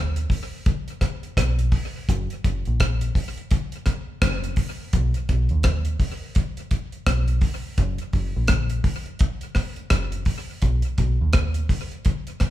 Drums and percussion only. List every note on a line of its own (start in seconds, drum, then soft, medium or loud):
0.16 closed hi-hat medium
0.30 kick medium
0.30 open hi-hat medium
0.66 kick loud
0.66 closed hi-hat medium
0.88 closed hi-hat soft
1.01 kick medium
1.01 cross-stick medium
1.01 closed hi-hat medium
1.23 closed hi-hat soft
1.37 kick loud
1.37 cross-stick loud
1.37 closed hi-hat loud
1.59 closed hi-hat medium
1.72 kick medium
1.72 open hi-hat medium
2.09 kick loud
2.09 closed hi-hat medium
2.30 closed hi-hat soft
2.44 kick medium
2.44 closed hi-hat medium
2.65 closed hi-hat soft
2.80 kick loud
2.80 cross-stick loud
2.80 closed hi-hat medium
3.01 closed hi-hat medium
3.15 kick medium
3.15 open hi-hat medium
3.37 closed hi-hat soft
3.51 kick loud
3.51 closed hi-hat medium
3.72 closed hi-hat soft
3.86 kick medium
3.86 cross-stick medium
3.86 closed hi-hat medium
4.22 kick loud
4.22 cross-stick loud
4.22 closed hi-hat loud
4.44 closed hi-hat soft
4.56 kick medium
4.56 open hi-hat medium
4.93 kick medium
4.93 closed hi-hat medium
5.14 closed hi-hat soft
5.29 kick medium
5.29 closed hi-hat medium
5.49 closed hi-hat soft
5.63 kick loud
5.63 cross-stick loud
5.63 closed hi-hat medium
5.85 closed hi-hat medium
6.00 kick medium
6.00 open hi-hat medium
6.35 kick loud
6.35 closed hi-hat medium
6.57 closed hi-hat soft
6.71 kick medium
6.71 closed hi-hat medium
6.92 closed hi-hat soft
7.06 kick loud
7.06 cross-stick loud
7.06 closed hi-hat loud
7.28 closed hi-hat medium
7.41 kick medium
7.41 open hi-hat medium
7.78 kick medium
7.78 closed hi-hat medium
7.98 closed hi-hat soft
8.13 kick medium
8.13 open hi-hat soft
8.48 kick loud
8.48 cross-stick loud
8.48 closed hi-hat medium
8.70 closed hi-hat medium
8.84 kick medium
8.84 open hi-hat medium
9.06 closed hi-hat soft
9.19 kick loud
9.19 closed hi-hat medium
9.41 closed hi-hat soft
9.55 kick medium
9.55 cross-stick medium
9.55 open hi-hat medium
9.76 closed hi-hat soft
9.90 kick loud
9.90 cross-stick loud
9.90 closed hi-hat loud
10.12 closed hi-hat soft
10.25 kick medium
10.25 open hi-hat medium
10.62 kick medium
10.62 closed hi-hat medium
10.82 closed hi-hat soft
10.98 kick medium
10.98 closed hi-hat medium
11.33 kick loud
11.33 cross-stick loud
11.33 closed hi-hat medium
11.54 closed hi-hat medium
11.69 kick medium
11.69 open hi-hat medium
11.91 closed hi-hat soft
12.05 kick loud
12.05 closed hi-hat medium
12.27 closed hi-hat soft
12.40 kick medium
12.40 cross-stick medium
12.40 closed hi-hat medium